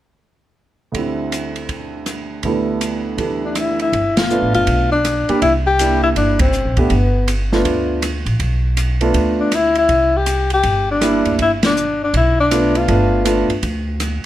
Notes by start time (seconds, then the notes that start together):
0.92 D2 D3 G3, kick, ride
0.96 C4 E4
1.32 hi-hat pedal, ride
1.56 ride
1.69 kick, ride
2.06 cross-stick, hi-hat pedal, ride
2.43 D2 D3 G3 A3 B3 E4, kick, ride
2.81 hi-hat pedal, ride
3.17 D3 E3 G3 A3 D4, kick, ride
3.45 D4
3.55 E4, cross-stick, hi-hat pedal, ride
3.79 E4, ride
3.93 G1, kick, ride
4.17 F4, snare, ride
4.30 A3 B3 D4 F4, hi-hat pedal
4.42 A1
4.54 F#1 F4, ride
4.67 B1, kick, ride
4.92 D4
5.05 cross-stick, hi-hat pedal, ride
5.29 G3 A#3 D4 G4, muted upright bass stroke, ride
5.42 C2 E4, kick, ride
5.67 G4
5.79 G3 A#3 D4 E4, hi-hat pedal, ride
6.03 E4
6.16 G1 D4, kick, ride
6.39 C4, kick, ride
6.53 hi-hat pedal
6.65 A#1
6.77 F1 A3 B3 D4 G4, kick, ride
6.90 G1, kick, ride
7.28 hi-hat pedal, ride
7.52 A3 B3 D4 F4, snare
7.65 D2, kick, ride
8.02 cross-stick, hi-hat pedal, ride
8.26 A1, ride
8.39 B1, kick, ride
8.77 hi-hat pedal, ride
9.01 A3 B3 D4 F4, ride
9.14 D2, kick, ride
9.40 D4
9.52 E4, cross-stick, hi-hat pedal, ride
9.75 E4, ride
9.89 C2, kick, ride
10.17 G4
10.26 hi-hat pedal, ride
10.50 G4, ride
10.63 G1, kick, ride
10.91 D4
11.01 G3 A#3 D4 E4, cross-stick, hi-hat pedal, ride
11.25 D2, ride
11.39 G1 E4, kick, ride
11.63 D4, snare, ride
11.77 hi-hat pedal
12.04 D4
12.13 B1 E4, kick, ride
12.40 D4
12.51 A3 B3 D4 F4, cross-stick, hi-hat pedal, ride
12.75 F4, ride
12.88 G1 A3 B3 D4 F4, kick, ride
13.25 A3 B3 D4 F4, hi-hat pedal, ride
13.49 muted upright bass stroke, ride
13.63 D2, kick, ride
14.00 cross-stick, hi-hat pedal, ride